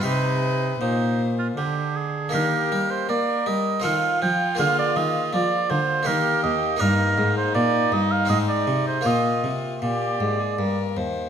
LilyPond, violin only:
\new Staff \with { instrumentName = "Violin" } { \time 3/4 \key c \minor \tempo 4 = 80 b'4 c''4 r4 | \key ees \major g'4 bes'4 f'4~ | f'2 g'4 | ees'2. |
f'4 g'8. aes'16 bes'8 c''8 | }